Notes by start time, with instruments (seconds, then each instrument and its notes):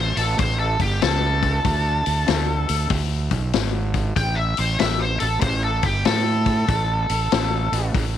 Already playing: fingered electric bass A1, lead electric guitar C5
0.17 fingered electric bass A1, lead electric guitar A4, open hi-hat
0.39 fingered electric bass A1, lead electric guitar C5, kick, open hi-hat
0.59 lead electric guitar A4
0.80 fingered electric bass G1, lead electric guitar G4, kick, open hi-hat
1.02 fingered electric bass C#2, lead electric guitar A4, snare, open hi-hat
1.43 kick, open hi-hat
1.65 fingered electric bass D2, kick, open hi-hat
2.06 fingered electric bass D2, open hi-hat
2.28 fingered electric bass D2, snare, open hi-hat
2.69 fingered electric bass D2, open hi-hat
2.90 fingered electric bass D2, kick, open hi-hat
3.31 fingered electric bass B1, kick, open hi-hat
3.53 fingered electric bass G#1, snare, open hi-hat
3.94 kick, open hi-hat
4.16 fingered electric bass A1, lead electric guitar G5, kick, open hi-hat
4.36 lead electric guitar E5
4.57 fingered electric bass A1, lead electric guitar C5, open hi-hat
4.79 fingered electric bass A1, lead electric guitar E5, snare, open hi-hat
5.00 lead electric guitar C5
5.20 fingered electric bass A1, lead electric guitar A4, open hi-hat
5.41 fingered electric bass A1, lead electric guitar C5, kick, open hi-hat
5.64 lead electric guitar A4
5.83 fingered electric bass G1, lead electric guitar G4, kick, open hi-hat
6.05 fingered electric bass A2, lead electric guitar A4, snare, open hi-hat
6.46 kick, open hi-hat
6.68 fingered electric bass A1, kick, open hi-hat
7.09 fingered electric bass A1, open hi-hat
7.32 fingered electric bass A1, snare, open hi-hat
7.72 fingered electric bass A1, open hi-hat
7.94 fingered electric bass A1, kick, open hi-hat